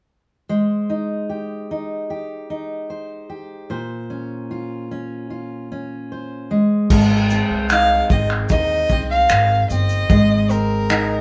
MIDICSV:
0, 0, Header, 1, 5, 480
1, 0, Start_track
1, 0, Key_signature, -4, "major"
1, 0, Tempo, 801068
1, 296, Time_signature, 4, 2, 24, 8
1, 6716, End_track
2, 0, Start_track
2, 0, Title_t, "Violin"
2, 0, Program_c, 0, 40
2, 4623, Note_on_c, 0, 77, 98
2, 4843, Note_off_c, 0, 77, 0
2, 4859, Note_on_c, 0, 75, 91
2, 4966, Note_off_c, 0, 75, 0
2, 5101, Note_on_c, 0, 75, 109
2, 5433, Note_off_c, 0, 75, 0
2, 5457, Note_on_c, 0, 77, 93
2, 5791, Note_off_c, 0, 77, 0
2, 5818, Note_on_c, 0, 75, 98
2, 6301, Note_on_c, 0, 70, 89
2, 6310, Note_off_c, 0, 75, 0
2, 6716, Note_off_c, 0, 70, 0
2, 6716, End_track
3, 0, Start_track
3, 0, Title_t, "Steel-string acoustic guitar"
3, 0, Program_c, 1, 25
3, 296, Note_on_c, 1, 56, 58
3, 299, Note_on_c, 1, 72, 48
3, 537, Note_on_c, 1, 63, 52
3, 776, Note_on_c, 1, 67, 46
3, 1017, Note_off_c, 1, 63, 0
3, 1025, Note_on_c, 1, 63, 50
3, 1252, Note_off_c, 1, 67, 0
3, 1259, Note_on_c, 1, 67, 49
3, 1491, Note_off_c, 1, 63, 0
3, 1499, Note_on_c, 1, 63, 51
3, 1735, Note_off_c, 1, 72, 0
3, 1737, Note_on_c, 1, 72, 52
3, 1967, Note_off_c, 1, 67, 0
3, 1974, Note_on_c, 1, 67, 45
3, 2216, Note_on_c, 1, 46, 67
3, 2217, Note_off_c, 1, 56, 0
3, 2218, Note_off_c, 1, 72, 0
3, 2221, Note_on_c, 1, 72, 50
3, 2264, Note_off_c, 1, 67, 0
3, 2266, Note_off_c, 1, 63, 0
3, 2457, Note_on_c, 1, 61, 49
3, 2700, Note_on_c, 1, 65, 53
3, 2937, Note_off_c, 1, 61, 0
3, 2944, Note_on_c, 1, 61, 48
3, 3170, Note_off_c, 1, 65, 0
3, 3178, Note_on_c, 1, 65, 47
3, 3419, Note_off_c, 1, 61, 0
3, 3426, Note_on_c, 1, 61, 50
3, 3663, Note_off_c, 1, 72, 0
3, 3666, Note_on_c, 1, 72, 48
3, 3900, Note_on_c, 1, 56, 60
3, 3944, Note_off_c, 1, 46, 0
3, 3945, Note_off_c, 1, 65, 0
3, 3949, Note_off_c, 1, 61, 0
3, 4143, Note_off_c, 1, 56, 0
3, 4145, Note_on_c, 1, 56, 81
3, 4385, Note_on_c, 1, 60, 62
3, 4624, Note_on_c, 1, 63, 60
3, 4860, Note_off_c, 1, 60, 0
3, 4869, Note_on_c, 1, 60, 62
3, 5091, Note_off_c, 1, 63, 0
3, 5098, Note_on_c, 1, 63, 58
3, 5337, Note_off_c, 1, 60, 0
3, 5344, Note_on_c, 1, 60, 64
3, 5576, Note_off_c, 1, 72, 0
3, 5578, Note_on_c, 1, 70, 56
3, 5814, Note_off_c, 1, 60, 0
3, 5821, Note_on_c, 1, 60, 62
3, 6051, Note_off_c, 1, 56, 0
3, 6054, Note_on_c, 1, 56, 88
3, 6284, Note_off_c, 1, 60, 0
3, 6291, Note_on_c, 1, 60, 59
3, 6525, Note_off_c, 1, 63, 0
3, 6532, Note_on_c, 1, 63, 65
3, 6716, Note_off_c, 1, 56, 0
3, 6716, Note_off_c, 1, 60, 0
3, 6716, Note_off_c, 1, 63, 0
3, 6716, Note_off_c, 1, 70, 0
3, 6716, End_track
4, 0, Start_track
4, 0, Title_t, "Upright bass"
4, 0, Program_c, 2, 32
4, 4135, Note_on_c, 2, 32, 98
4, 4431, Note_off_c, 2, 32, 0
4, 4498, Note_on_c, 2, 36, 74
4, 4792, Note_off_c, 2, 36, 0
4, 4854, Note_on_c, 2, 32, 82
4, 5051, Note_off_c, 2, 32, 0
4, 5096, Note_on_c, 2, 39, 91
4, 5292, Note_off_c, 2, 39, 0
4, 5332, Note_on_c, 2, 36, 75
4, 5530, Note_off_c, 2, 36, 0
4, 5574, Note_on_c, 2, 32, 96
4, 5770, Note_off_c, 2, 32, 0
4, 5813, Note_on_c, 2, 31, 85
4, 6010, Note_off_c, 2, 31, 0
4, 6050, Note_on_c, 2, 32, 95
4, 6716, Note_off_c, 2, 32, 0
4, 6716, End_track
5, 0, Start_track
5, 0, Title_t, "Drums"
5, 4136, Note_on_c, 9, 36, 101
5, 4136, Note_on_c, 9, 49, 96
5, 4196, Note_off_c, 9, 36, 0
5, 4196, Note_off_c, 9, 49, 0
5, 4374, Note_on_c, 9, 82, 42
5, 4434, Note_off_c, 9, 82, 0
5, 4611, Note_on_c, 9, 82, 74
5, 4614, Note_on_c, 9, 26, 100
5, 4671, Note_off_c, 9, 82, 0
5, 4674, Note_off_c, 9, 26, 0
5, 4854, Note_on_c, 9, 36, 85
5, 4854, Note_on_c, 9, 82, 50
5, 4914, Note_off_c, 9, 36, 0
5, 4914, Note_off_c, 9, 82, 0
5, 4974, Note_on_c, 9, 26, 35
5, 5033, Note_off_c, 9, 26, 0
5, 5088, Note_on_c, 9, 82, 69
5, 5094, Note_on_c, 9, 36, 91
5, 5148, Note_off_c, 9, 82, 0
5, 5154, Note_off_c, 9, 36, 0
5, 5328, Note_on_c, 9, 82, 40
5, 5331, Note_on_c, 9, 36, 70
5, 5388, Note_off_c, 9, 82, 0
5, 5391, Note_off_c, 9, 36, 0
5, 5568, Note_on_c, 9, 82, 67
5, 5571, Note_on_c, 9, 26, 104
5, 5628, Note_off_c, 9, 82, 0
5, 5630, Note_off_c, 9, 26, 0
5, 5812, Note_on_c, 9, 82, 44
5, 5872, Note_off_c, 9, 82, 0
5, 5926, Note_on_c, 9, 82, 46
5, 5986, Note_off_c, 9, 82, 0
5, 6050, Note_on_c, 9, 82, 66
5, 6051, Note_on_c, 9, 36, 105
5, 6110, Note_off_c, 9, 82, 0
5, 6111, Note_off_c, 9, 36, 0
5, 6289, Note_on_c, 9, 82, 43
5, 6349, Note_off_c, 9, 82, 0
5, 6529, Note_on_c, 9, 82, 74
5, 6532, Note_on_c, 9, 26, 102
5, 6589, Note_off_c, 9, 82, 0
5, 6592, Note_off_c, 9, 26, 0
5, 6716, End_track
0, 0, End_of_file